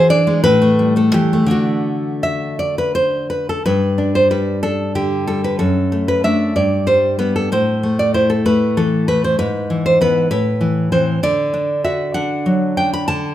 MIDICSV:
0, 0, Header, 1, 2, 480
1, 0, Start_track
1, 0, Key_signature, 1, "major"
1, 0, Tempo, 681818
1, 560, Tempo, 722022
1, 1046, Time_signature, 6, 3, 24, 8
1, 2000, Tempo, 675676
1, 2960, Tempo, 638978
1, 5840, Tempo, 617284
1, 9883, End_track
2, 0, Start_track
2, 0, Title_t, "Nylon-string guitar"
2, 0, Program_c, 0, 24
2, 0, Note_on_c, 0, 52, 89
2, 0, Note_on_c, 0, 66, 64
2, 0, Note_on_c, 0, 68, 73
2, 71, Note_on_c, 0, 74, 109
2, 72, Note_off_c, 0, 66, 0
2, 75, Note_on_c, 0, 62, 68
2, 190, Note_on_c, 0, 56, 61
2, 291, Note_off_c, 0, 52, 0
2, 302, Note_off_c, 0, 74, 0
2, 307, Note_on_c, 0, 71, 116
2, 312, Note_off_c, 0, 56, 0
2, 312, Note_on_c, 0, 45, 88
2, 314, Note_off_c, 0, 62, 0
2, 314, Note_off_c, 0, 68, 0
2, 434, Note_on_c, 0, 57, 63
2, 557, Note_on_c, 0, 55, 58
2, 661, Note_off_c, 0, 71, 0
2, 663, Note_off_c, 0, 57, 0
2, 670, Note_on_c, 0, 57, 59
2, 675, Note_on_c, 0, 69, 74
2, 787, Note_off_c, 0, 45, 0
2, 789, Note_on_c, 0, 67, 88
2, 790, Note_on_c, 0, 52, 61
2, 797, Note_off_c, 0, 69, 0
2, 907, Note_off_c, 0, 57, 0
2, 915, Note_on_c, 0, 57, 63
2, 1002, Note_off_c, 0, 52, 0
2, 1005, Note_on_c, 0, 50, 75
2, 1008, Note_off_c, 0, 57, 0
2, 1015, Note_on_c, 0, 57, 56
2, 1026, Note_off_c, 0, 55, 0
2, 1028, Note_on_c, 0, 62, 58
2, 1030, Note_off_c, 0, 67, 0
2, 1034, Note_on_c, 0, 66, 89
2, 1514, Note_on_c, 0, 76, 84
2, 1747, Note_off_c, 0, 76, 0
2, 1753, Note_on_c, 0, 74, 80
2, 1876, Note_off_c, 0, 74, 0
2, 1881, Note_on_c, 0, 71, 80
2, 1989, Note_off_c, 0, 71, 0
2, 1992, Note_on_c, 0, 72, 84
2, 2216, Note_off_c, 0, 66, 0
2, 2236, Note_off_c, 0, 72, 0
2, 2239, Note_on_c, 0, 71, 77
2, 2369, Note_off_c, 0, 71, 0
2, 2377, Note_on_c, 0, 69, 74
2, 2443, Note_off_c, 0, 50, 0
2, 2449, Note_off_c, 0, 57, 0
2, 2456, Note_off_c, 0, 62, 0
2, 2491, Note_off_c, 0, 69, 0
2, 2493, Note_on_c, 0, 71, 89
2, 2497, Note_on_c, 0, 43, 68
2, 2724, Note_on_c, 0, 62, 55
2, 2830, Note_off_c, 0, 71, 0
2, 2846, Note_on_c, 0, 72, 84
2, 2954, Note_off_c, 0, 72, 0
2, 2955, Note_on_c, 0, 55, 52
2, 2957, Note_on_c, 0, 71, 80
2, 3191, Note_off_c, 0, 62, 0
2, 3191, Note_off_c, 0, 71, 0
2, 3196, Note_on_c, 0, 69, 89
2, 3200, Note_on_c, 0, 62, 59
2, 3430, Note_off_c, 0, 69, 0
2, 3440, Note_on_c, 0, 50, 55
2, 3441, Note_on_c, 0, 67, 82
2, 3674, Note_off_c, 0, 67, 0
2, 3680, Note_off_c, 0, 55, 0
2, 3683, Note_on_c, 0, 69, 80
2, 3689, Note_on_c, 0, 55, 54
2, 3806, Note_off_c, 0, 69, 0
2, 3809, Note_on_c, 0, 71, 81
2, 3901, Note_off_c, 0, 43, 0
2, 3915, Note_off_c, 0, 71, 0
2, 3918, Note_on_c, 0, 69, 86
2, 3921, Note_on_c, 0, 42, 70
2, 3927, Note_off_c, 0, 50, 0
2, 3927, Note_off_c, 0, 62, 0
2, 3931, Note_off_c, 0, 55, 0
2, 4167, Note_on_c, 0, 57, 57
2, 4271, Note_off_c, 0, 69, 0
2, 4289, Note_on_c, 0, 71, 81
2, 4398, Note_off_c, 0, 57, 0
2, 4406, Note_off_c, 0, 71, 0
2, 4406, Note_on_c, 0, 57, 50
2, 4409, Note_on_c, 0, 76, 84
2, 4413, Note_on_c, 0, 62, 56
2, 4622, Note_off_c, 0, 42, 0
2, 4622, Note_off_c, 0, 57, 0
2, 4626, Note_off_c, 0, 62, 0
2, 4636, Note_off_c, 0, 76, 0
2, 4646, Note_on_c, 0, 43, 69
2, 4648, Note_on_c, 0, 74, 70
2, 4875, Note_off_c, 0, 74, 0
2, 4878, Note_on_c, 0, 55, 55
2, 4881, Note_on_c, 0, 72, 85
2, 5113, Note_off_c, 0, 55, 0
2, 5113, Note_off_c, 0, 72, 0
2, 5119, Note_on_c, 0, 71, 80
2, 5121, Note_on_c, 0, 55, 54
2, 5125, Note_on_c, 0, 59, 58
2, 5243, Note_off_c, 0, 71, 0
2, 5247, Note_on_c, 0, 69, 77
2, 5341, Note_off_c, 0, 55, 0
2, 5341, Note_off_c, 0, 59, 0
2, 5344, Note_off_c, 0, 43, 0
2, 5367, Note_off_c, 0, 69, 0
2, 5368, Note_on_c, 0, 45, 71
2, 5372, Note_on_c, 0, 72, 85
2, 5605, Note_on_c, 0, 57, 58
2, 5710, Note_off_c, 0, 72, 0
2, 5724, Note_on_c, 0, 74, 84
2, 5835, Note_off_c, 0, 74, 0
2, 5837, Note_on_c, 0, 72, 79
2, 5839, Note_on_c, 0, 64, 56
2, 5957, Note_on_c, 0, 69, 77
2, 5958, Note_off_c, 0, 72, 0
2, 6071, Note_off_c, 0, 57, 0
2, 6079, Note_off_c, 0, 69, 0
2, 6080, Note_on_c, 0, 57, 59
2, 6081, Note_on_c, 0, 71, 91
2, 6313, Note_off_c, 0, 71, 0
2, 6325, Note_on_c, 0, 52, 57
2, 6327, Note_on_c, 0, 69, 88
2, 6554, Note_off_c, 0, 69, 0
2, 6559, Note_off_c, 0, 57, 0
2, 6563, Note_off_c, 0, 64, 0
2, 6566, Note_on_c, 0, 71, 87
2, 6567, Note_on_c, 0, 57, 54
2, 6683, Note_off_c, 0, 71, 0
2, 6693, Note_on_c, 0, 72, 83
2, 6771, Note_off_c, 0, 45, 0
2, 6802, Note_off_c, 0, 52, 0
2, 6802, Note_off_c, 0, 72, 0
2, 6803, Note_off_c, 0, 57, 0
2, 6805, Note_on_c, 0, 44, 68
2, 6805, Note_on_c, 0, 71, 88
2, 7048, Note_on_c, 0, 52, 59
2, 7147, Note_off_c, 0, 71, 0
2, 7170, Note_on_c, 0, 72, 83
2, 7278, Note_off_c, 0, 52, 0
2, 7285, Note_off_c, 0, 72, 0
2, 7287, Note_on_c, 0, 52, 54
2, 7291, Note_on_c, 0, 59, 57
2, 7293, Note_on_c, 0, 71, 80
2, 7497, Note_off_c, 0, 44, 0
2, 7497, Note_off_c, 0, 52, 0
2, 7498, Note_off_c, 0, 59, 0
2, 7512, Note_off_c, 0, 71, 0
2, 7521, Note_on_c, 0, 71, 96
2, 7524, Note_on_c, 0, 45, 72
2, 7753, Note_on_c, 0, 52, 58
2, 7971, Note_off_c, 0, 71, 0
2, 7987, Note_off_c, 0, 52, 0
2, 7995, Note_on_c, 0, 52, 55
2, 7997, Note_on_c, 0, 60, 57
2, 7997, Note_on_c, 0, 72, 74
2, 8207, Note_off_c, 0, 52, 0
2, 8207, Note_off_c, 0, 60, 0
2, 8209, Note_off_c, 0, 45, 0
2, 8220, Note_off_c, 0, 72, 0
2, 8237, Note_on_c, 0, 50, 72
2, 8240, Note_on_c, 0, 74, 98
2, 8475, Note_on_c, 0, 62, 62
2, 8694, Note_off_c, 0, 74, 0
2, 8715, Note_on_c, 0, 76, 86
2, 8717, Note_on_c, 0, 66, 58
2, 8941, Note_off_c, 0, 76, 0
2, 8943, Note_off_c, 0, 62, 0
2, 8948, Note_on_c, 0, 78, 98
2, 8953, Note_on_c, 0, 62, 62
2, 9193, Note_on_c, 0, 54, 58
2, 9415, Note_off_c, 0, 78, 0
2, 9429, Note_off_c, 0, 62, 0
2, 9436, Note_on_c, 0, 79, 89
2, 9438, Note_on_c, 0, 62, 55
2, 9440, Note_off_c, 0, 66, 0
2, 9557, Note_off_c, 0, 79, 0
2, 9563, Note_on_c, 0, 83, 91
2, 9653, Note_off_c, 0, 50, 0
2, 9671, Note_off_c, 0, 83, 0
2, 9674, Note_on_c, 0, 81, 100
2, 9680, Note_off_c, 0, 54, 0
2, 9680, Note_off_c, 0, 62, 0
2, 9681, Note_on_c, 0, 50, 73
2, 9883, Note_off_c, 0, 50, 0
2, 9883, Note_off_c, 0, 81, 0
2, 9883, End_track
0, 0, End_of_file